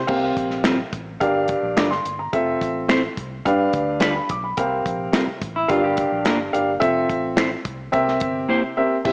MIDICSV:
0, 0, Header, 1, 7, 480
1, 0, Start_track
1, 0, Tempo, 560224
1, 75, Time_signature, 4, 2, 24, 8
1, 7818, End_track
2, 0, Start_track
2, 0, Title_t, "Upright piano"
2, 0, Program_c, 0, 0
2, 63, Note_on_c, 0, 77, 87
2, 64, Note_on_c, 0, 60, 77
2, 66, Note_on_c, 0, 70, 70
2, 67, Note_on_c, 0, 67, 70
2, 69, Note_on_c, 0, 48, 61
2, 668, Note_off_c, 0, 77, 0
2, 669, Note_off_c, 0, 60, 0
2, 670, Note_off_c, 0, 70, 0
2, 671, Note_off_c, 0, 67, 0
2, 758, Note_off_c, 0, 48, 0
2, 1030, Note_on_c, 0, 43, 72
2, 1032, Note_on_c, 0, 77, 95
2, 1033, Note_on_c, 0, 67, 84
2, 1035, Note_on_c, 0, 70, 76
2, 1037, Note_on_c, 0, 62, 88
2, 1514, Note_on_c, 0, 86, 59
2, 1610, Note_off_c, 0, 67, 0
2, 1610, Note_off_c, 0, 77, 0
2, 1611, Note_off_c, 0, 70, 0
2, 1612, Note_off_c, 0, 62, 0
2, 1629, Note_off_c, 0, 86, 0
2, 1634, Note_on_c, 0, 84, 67
2, 1719, Note_off_c, 0, 43, 0
2, 1863, Note_off_c, 0, 84, 0
2, 1877, Note_on_c, 0, 82, 60
2, 1995, Note_on_c, 0, 69, 71
2, 1995, Note_on_c, 0, 76, 93
2, 1996, Note_on_c, 0, 60, 82
2, 1997, Note_on_c, 0, 65, 70
2, 2105, Note_off_c, 0, 82, 0
2, 2595, Note_off_c, 0, 60, 0
2, 2595, Note_off_c, 0, 69, 0
2, 2595, Note_off_c, 0, 76, 0
2, 2596, Note_off_c, 0, 65, 0
2, 2959, Note_on_c, 0, 77, 101
2, 2960, Note_on_c, 0, 71, 80
2, 2962, Note_on_c, 0, 62, 86
2, 2962, Note_on_c, 0, 67, 81
2, 2963, Note_on_c, 0, 43, 70
2, 3534, Note_off_c, 0, 71, 0
2, 3534, Note_off_c, 0, 77, 0
2, 3535, Note_off_c, 0, 67, 0
2, 3536, Note_off_c, 0, 62, 0
2, 3562, Note_on_c, 0, 83, 66
2, 3646, Note_off_c, 0, 43, 0
2, 3673, Note_off_c, 0, 83, 0
2, 3692, Note_on_c, 0, 86, 56
2, 3798, Note_off_c, 0, 86, 0
2, 3802, Note_on_c, 0, 83, 57
2, 3919, Note_on_c, 0, 60, 77
2, 3919, Note_on_c, 0, 70, 80
2, 3921, Note_on_c, 0, 77, 85
2, 3922, Note_on_c, 0, 48, 67
2, 3926, Note_on_c, 0, 67, 68
2, 4028, Note_off_c, 0, 83, 0
2, 4517, Note_off_c, 0, 60, 0
2, 4517, Note_off_c, 0, 70, 0
2, 4519, Note_off_c, 0, 77, 0
2, 4521, Note_off_c, 0, 67, 0
2, 4605, Note_off_c, 0, 48, 0
2, 4870, Note_on_c, 0, 70, 74
2, 4870, Note_on_c, 0, 77, 96
2, 4871, Note_on_c, 0, 43, 73
2, 4872, Note_on_c, 0, 62, 87
2, 4875, Note_on_c, 0, 67, 79
2, 5450, Note_off_c, 0, 70, 0
2, 5450, Note_off_c, 0, 77, 0
2, 5451, Note_off_c, 0, 62, 0
2, 5452, Note_off_c, 0, 67, 0
2, 5560, Note_off_c, 0, 43, 0
2, 5592, Note_on_c, 0, 67, 69
2, 5593, Note_on_c, 0, 70, 65
2, 5594, Note_on_c, 0, 62, 73
2, 5596, Note_on_c, 0, 77, 88
2, 5744, Note_off_c, 0, 67, 0
2, 5745, Note_off_c, 0, 70, 0
2, 5746, Note_off_c, 0, 62, 0
2, 5746, Note_off_c, 0, 77, 0
2, 5825, Note_on_c, 0, 65, 77
2, 5826, Note_on_c, 0, 76, 98
2, 5828, Note_on_c, 0, 69, 72
2, 5829, Note_on_c, 0, 60, 84
2, 6430, Note_off_c, 0, 65, 0
2, 6431, Note_off_c, 0, 76, 0
2, 6432, Note_off_c, 0, 69, 0
2, 6433, Note_off_c, 0, 60, 0
2, 6786, Note_on_c, 0, 48, 73
2, 6786, Note_on_c, 0, 60, 88
2, 6789, Note_on_c, 0, 76, 95
2, 6790, Note_on_c, 0, 70, 85
2, 6794, Note_on_c, 0, 67, 80
2, 7368, Note_off_c, 0, 60, 0
2, 7369, Note_off_c, 0, 76, 0
2, 7370, Note_off_c, 0, 70, 0
2, 7372, Note_off_c, 0, 67, 0
2, 7478, Note_off_c, 0, 48, 0
2, 7514, Note_on_c, 0, 76, 76
2, 7515, Note_on_c, 0, 67, 66
2, 7516, Note_on_c, 0, 60, 78
2, 7517, Note_on_c, 0, 70, 71
2, 7666, Note_off_c, 0, 67, 0
2, 7666, Note_off_c, 0, 76, 0
2, 7667, Note_off_c, 0, 60, 0
2, 7667, Note_off_c, 0, 70, 0
2, 7751, Note_on_c, 0, 67, 73
2, 7752, Note_on_c, 0, 64, 78
2, 7753, Note_on_c, 0, 76, 82
2, 7757, Note_on_c, 0, 60, 78
2, 7759, Note_on_c, 0, 48, 70
2, 7818, Note_off_c, 0, 48, 0
2, 7818, Note_off_c, 0, 60, 0
2, 7818, Note_off_c, 0, 64, 0
2, 7818, Note_off_c, 0, 67, 0
2, 7818, Note_off_c, 0, 76, 0
2, 7818, End_track
3, 0, Start_track
3, 0, Title_t, "Clean electric guitar"
3, 0, Program_c, 1, 27
3, 4764, Note_on_c, 1, 64, 73
3, 4875, Note_off_c, 1, 64, 0
3, 4880, Note_on_c, 1, 65, 91
3, 4992, Note_off_c, 1, 65, 0
3, 5003, Note_on_c, 1, 67, 69
3, 5686, Note_off_c, 1, 67, 0
3, 7818, End_track
4, 0, Start_track
4, 0, Title_t, "Clean electric guitar"
4, 0, Program_c, 2, 27
4, 558, Note_on_c, 2, 55, 75
4, 559, Note_on_c, 2, 60, 88
4, 563, Note_on_c, 2, 65, 89
4, 565, Note_on_c, 2, 70, 72
4, 663, Note_off_c, 2, 55, 0
4, 664, Note_off_c, 2, 60, 0
4, 666, Note_off_c, 2, 65, 0
4, 667, Note_off_c, 2, 70, 0
4, 1512, Note_on_c, 2, 62, 75
4, 1514, Note_on_c, 2, 55, 81
4, 1515, Note_on_c, 2, 65, 78
4, 1522, Note_on_c, 2, 70, 70
4, 1620, Note_off_c, 2, 62, 0
4, 1622, Note_off_c, 2, 55, 0
4, 1622, Note_off_c, 2, 65, 0
4, 1626, Note_off_c, 2, 70, 0
4, 2471, Note_on_c, 2, 60, 89
4, 2478, Note_on_c, 2, 64, 80
4, 2478, Note_on_c, 2, 69, 91
4, 2479, Note_on_c, 2, 72, 96
4, 2580, Note_off_c, 2, 60, 0
4, 2584, Note_off_c, 2, 64, 0
4, 2584, Note_off_c, 2, 69, 0
4, 2584, Note_off_c, 2, 72, 0
4, 3427, Note_on_c, 2, 55, 90
4, 3428, Note_on_c, 2, 62, 80
4, 3432, Note_on_c, 2, 65, 88
4, 3436, Note_on_c, 2, 71, 101
4, 3538, Note_off_c, 2, 55, 0
4, 3539, Note_off_c, 2, 62, 0
4, 3541, Note_off_c, 2, 65, 0
4, 3543, Note_off_c, 2, 71, 0
4, 4391, Note_on_c, 2, 55, 76
4, 4394, Note_on_c, 2, 60, 79
4, 4398, Note_on_c, 2, 65, 89
4, 4401, Note_on_c, 2, 70, 85
4, 4501, Note_off_c, 2, 55, 0
4, 4502, Note_off_c, 2, 60, 0
4, 4504, Note_off_c, 2, 65, 0
4, 4506, Note_off_c, 2, 70, 0
4, 5361, Note_on_c, 2, 58, 82
4, 5365, Note_on_c, 2, 62, 83
4, 5366, Note_on_c, 2, 70, 91
4, 5368, Note_on_c, 2, 65, 82
4, 5466, Note_off_c, 2, 58, 0
4, 5468, Note_off_c, 2, 62, 0
4, 5469, Note_off_c, 2, 65, 0
4, 5469, Note_off_c, 2, 70, 0
4, 6308, Note_on_c, 2, 60, 72
4, 6313, Note_on_c, 2, 64, 84
4, 6317, Note_on_c, 2, 69, 85
4, 6318, Note_on_c, 2, 72, 85
4, 6419, Note_off_c, 2, 60, 0
4, 6422, Note_off_c, 2, 64, 0
4, 6424, Note_off_c, 2, 69, 0
4, 6425, Note_off_c, 2, 72, 0
4, 7271, Note_on_c, 2, 58, 81
4, 7274, Note_on_c, 2, 64, 80
4, 7279, Note_on_c, 2, 67, 88
4, 7280, Note_on_c, 2, 72, 97
4, 7381, Note_off_c, 2, 58, 0
4, 7383, Note_off_c, 2, 64, 0
4, 7385, Note_off_c, 2, 67, 0
4, 7385, Note_off_c, 2, 72, 0
4, 7818, End_track
5, 0, Start_track
5, 0, Title_t, "Fingered electric bass"
5, 0, Program_c, 3, 33
5, 75, Note_on_c, 3, 36, 85
5, 268, Note_off_c, 3, 36, 0
5, 316, Note_on_c, 3, 34, 90
5, 702, Note_off_c, 3, 34, 0
5, 796, Note_on_c, 3, 33, 88
5, 989, Note_off_c, 3, 33, 0
5, 1039, Note_on_c, 3, 31, 96
5, 1328, Note_off_c, 3, 31, 0
5, 1396, Note_on_c, 3, 34, 86
5, 1492, Note_off_c, 3, 34, 0
5, 1519, Note_on_c, 3, 31, 81
5, 1711, Note_off_c, 3, 31, 0
5, 1760, Note_on_c, 3, 31, 77
5, 1952, Note_off_c, 3, 31, 0
5, 1998, Note_on_c, 3, 29, 105
5, 2191, Note_off_c, 3, 29, 0
5, 2240, Note_on_c, 3, 33, 80
5, 2625, Note_off_c, 3, 33, 0
5, 2720, Note_on_c, 3, 36, 99
5, 2912, Note_off_c, 3, 36, 0
5, 2967, Note_on_c, 3, 43, 103
5, 3156, Note_off_c, 3, 43, 0
5, 3202, Note_on_c, 3, 38, 80
5, 3586, Note_off_c, 3, 38, 0
5, 3683, Note_on_c, 3, 35, 92
5, 3874, Note_off_c, 3, 35, 0
5, 3923, Note_on_c, 3, 36, 104
5, 4114, Note_off_c, 3, 36, 0
5, 4162, Note_on_c, 3, 34, 99
5, 4353, Note_off_c, 3, 34, 0
5, 4643, Note_on_c, 3, 33, 94
5, 4834, Note_off_c, 3, 33, 0
5, 4881, Note_on_c, 3, 31, 108
5, 5169, Note_off_c, 3, 31, 0
5, 5245, Note_on_c, 3, 34, 80
5, 5338, Note_off_c, 3, 34, 0
5, 5369, Note_on_c, 3, 31, 84
5, 5557, Note_off_c, 3, 31, 0
5, 5609, Note_on_c, 3, 31, 84
5, 5798, Note_off_c, 3, 31, 0
5, 5842, Note_on_c, 3, 29, 99
5, 6033, Note_off_c, 3, 29, 0
5, 6078, Note_on_c, 3, 33, 88
5, 6464, Note_off_c, 3, 33, 0
5, 6556, Note_on_c, 3, 36, 91
5, 6750, Note_off_c, 3, 36, 0
5, 6802, Note_on_c, 3, 36, 91
5, 6993, Note_off_c, 3, 36, 0
5, 7038, Note_on_c, 3, 31, 84
5, 7231, Note_off_c, 3, 31, 0
5, 7757, Note_on_c, 3, 36, 88
5, 7818, Note_off_c, 3, 36, 0
5, 7818, End_track
6, 0, Start_track
6, 0, Title_t, "Muted fingered electric bass strokes"
6, 4521, Note_on_c, 9, 29, 49
6, 4607, Note_off_c, 9, 29, 0
6, 7818, End_track
7, 0, Start_track
7, 0, Title_t, "Drums"
7, 69, Note_on_c, 9, 49, 89
7, 75, Note_on_c, 9, 36, 95
7, 154, Note_off_c, 9, 49, 0
7, 161, Note_off_c, 9, 36, 0
7, 315, Note_on_c, 9, 36, 83
7, 321, Note_on_c, 9, 42, 70
7, 401, Note_off_c, 9, 36, 0
7, 407, Note_off_c, 9, 42, 0
7, 433, Note_on_c, 9, 38, 27
7, 519, Note_off_c, 9, 38, 0
7, 547, Note_on_c, 9, 42, 81
7, 548, Note_on_c, 9, 38, 102
7, 558, Note_on_c, 9, 26, 87
7, 633, Note_off_c, 9, 38, 0
7, 633, Note_off_c, 9, 42, 0
7, 643, Note_off_c, 9, 26, 0
7, 795, Note_on_c, 9, 36, 92
7, 795, Note_on_c, 9, 42, 72
7, 880, Note_off_c, 9, 36, 0
7, 880, Note_off_c, 9, 42, 0
7, 1039, Note_on_c, 9, 36, 87
7, 1040, Note_on_c, 9, 42, 70
7, 1124, Note_off_c, 9, 36, 0
7, 1125, Note_off_c, 9, 42, 0
7, 1267, Note_on_c, 9, 42, 68
7, 1277, Note_on_c, 9, 36, 83
7, 1352, Note_off_c, 9, 42, 0
7, 1363, Note_off_c, 9, 36, 0
7, 1515, Note_on_c, 9, 42, 80
7, 1520, Note_on_c, 9, 38, 98
7, 1522, Note_on_c, 9, 26, 83
7, 1601, Note_off_c, 9, 42, 0
7, 1606, Note_off_c, 9, 38, 0
7, 1608, Note_off_c, 9, 26, 0
7, 1642, Note_on_c, 9, 38, 35
7, 1727, Note_off_c, 9, 38, 0
7, 1760, Note_on_c, 9, 42, 71
7, 1846, Note_off_c, 9, 42, 0
7, 1999, Note_on_c, 9, 36, 104
7, 2000, Note_on_c, 9, 42, 91
7, 2085, Note_off_c, 9, 36, 0
7, 2085, Note_off_c, 9, 42, 0
7, 2240, Note_on_c, 9, 36, 81
7, 2249, Note_on_c, 9, 42, 77
7, 2325, Note_off_c, 9, 36, 0
7, 2334, Note_off_c, 9, 42, 0
7, 2477, Note_on_c, 9, 42, 84
7, 2478, Note_on_c, 9, 38, 110
7, 2481, Note_on_c, 9, 26, 89
7, 2563, Note_off_c, 9, 38, 0
7, 2563, Note_off_c, 9, 42, 0
7, 2567, Note_off_c, 9, 26, 0
7, 2719, Note_on_c, 9, 36, 86
7, 2722, Note_on_c, 9, 42, 68
7, 2805, Note_off_c, 9, 36, 0
7, 2807, Note_off_c, 9, 42, 0
7, 2963, Note_on_c, 9, 36, 79
7, 2964, Note_on_c, 9, 42, 72
7, 3048, Note_off_c, 9, 36, 0
7, 3050, Note_off_c, 9, 42, 0
7, 3197, Note_on_c, 9, 42, 74
7, 3201, Note_on_c, 9, 36, 88
7, 3283, Note_off_c, 9, 42, 0
7, 3287, Note_off_c, 9, 36, 0
7, 3429, Note_on_c, 9, 42, 80
7, 3434, Note_on_c, 9, 38, 89
7, 3448, Note_on_c, 9, 26, 85
7, 3514, Note_off_c, 9, 42, 0
7, 3519, Note_off_c, 9, 38, 0
7, 3533, Note_off_c, 9, 26, 0
7, 3678, Note_on_c, 9, 42, 78
7, 3682, Note_on_c, 9, 36, 91
7, 3764, Note_off_c, 9, 42, 0
7, 3768, Note_off_c, 9, 36, 0
7, 3917, Note_on_c, 9, 42, 102
7, 3922, Note_on_c, 9, 36, 105
7, 4003, Note_off_c, 9, 42, 0
7, 4008, Note_off_c, 9, 36, 0
7, 4162, Note_on_c, 9, 36, 86
7, 4169, Note_on_c, 9, 42, 73
7, 4248, Note_off_c, 9, 36, 0
7, 4255, Note_off_c, 9, 42, 0
7, 4398, Note_on_c, 9, 38, 101
7, 4398, Note_on_c, 9, 42, 84
7, 4404, Note_on_c, 9, 26, 85
7, 4483, Note_off_c, 9, 42, 0
7, 4484, Note_off_c, 9, 38, 0
7, 4490, Note_off_c, 9, 26, 0
7, 4640, Note_on_c, 9, 36, 89
7, 4640, Note_on_c, 9, 42, 76
7, 4726, Note_off_c, 9, 36, 0
7, 4726, Note_off_c, 9, 42, 0
7, 4877, Note_on_c, 9, 42, 76
7, 4882, Note_on_c, 9, 36, 89
7, 4963, Note_off_c, 9, 42, 0
7, 4967, Note_off_c, 9, 36, 0
7, 5115, Note_on_c, 9, 42, 73
7, 5122, Note_on_c, 9, 36, 86
7, 5201, Note_off_c, 9, 42, 0
7, 5208, Note_off_c, 9, 36, 0
7, 5355, Note_on_c, 9, 42, 81
7, 5360, Note_on_c, 9, 38, 93
7, 5362, Note_on_c, 9, 26, 78
7, 5440, Note_off_c, 9, 42, 0
7, 5445, Note_off_c, 9, 38, 0
7, 5447, Note_off_c, 9, 26, 0
7, 5607, Note_on_c, 9, 42, 74
7, 5693, Note_off_c, 9, 42, 0
7, 5841, Note_on_c, 9, 36, 112
7, 5844, Note_on_c, 9, 42, 107
7, 5927, Note_off_c, 9, 36, 0
7, 5930, Note_off_c, 9, 42, 0
7, 6079, Note_on_c, 9, 36, 95
7, 6080, Note_on_c, 9, 42, 73
7, 6165, Note_off_c, 9, 36, 0
7, 6166, Note_off_c, 9, 42, 0
7, 6314, Note_on_c, 9, 38, 108
7, 6314, Note_on_c, 9, 42, 91
7, 6324, Note_on_c, 9, 26, 96
7, 6399, Note_off_c, 9, 42, 0
7, 6400, Note_off_c, 9, 38, 0
7, 6410, Note_off_c, 9, 26, 0
7, 6555, Note_on_c, 9, 42, 81
7, 6556, Note_on_c, 9, 36, 96
7, 6640, Note_off_c, 9, 42, 0
7, 6641, Note_off_c, 9, 36, 0
7, 6796, Note_on_c, 9, 42, 74
7, 6800, Note_on_c, 9, 36, 88
7, 6882, Note_off_c, 9, 42, 0
7, 6886, Note_off_c, 9, 36, 0
7, 6923, Note_on_c, 9, 38, 36
7, 7009, Note_off_c, 9, 38, 0
7, 7028, Note_on_c, 9, 42, 83
7, 7038, Note_on_c, 9, 36, 92
7, 7113, Note_off_c, 9, 42, 0
7, 7123, Note_off_c, 9, 36, 0
7, 7755, Note_on_c, 9, 49, 104
7, 7756, Note_on_c, 9, 36, 111
7, 7818, Note_off_c, 9, 36, 0
7, 7818, Note_off_c, 9, 49, 0
7, 7818, End_track
0, 0, End_of_file